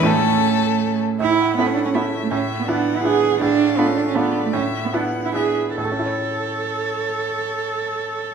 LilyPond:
<<
  \new Staff \with { instrumentName = "Violin" } { \time 3/4 \key a \major \tempo 4 = 156 a'2~ a'8 r8 | cis''8 fis''4. e''4 | e''4 fis''2 | f''2 d''4 |
e''4 fis''4 e''8 r8 | cis''2.~ | cis''2. | }
  \new Staff \with { instrumentName = "Cello" } { \time 3/4 \key a \major a2~ a8 r8 | e'4 b16 cis'16 d'16 cis'16 b8. a16 | cis'8. b16 d'8. e'16 gis'4 | d'4 b16 cis'16 d'16 cis'16 b8. a16 |
cis'8. b16 d'8. e'16 gis'4 | a'2.~ | a'2. | }
  \new Staff \with { instrumentName = "Grand piano" } { \time 3/4 \key a \major <a, a cis' e'>2. | a,4 <a cis' e'>4 <a cis' e'>4 | a,4 <b d' e'>4 <b d' e'>4 | a,4 <a d' f'>4 <a d' f'>4 |
a,4 <b d' e'>4 <b d' e'>4 | <a, a cis' e' cis''>2.~ | <a, a cis' e' cis''>2. | }
  \new Staff \with { instrumentName = "Violin" } { \time 3/4 \key a \major cis'2~ cis'8 r8 | r2. | r2. | r2. |
r2. | r2. | r2. | }
>>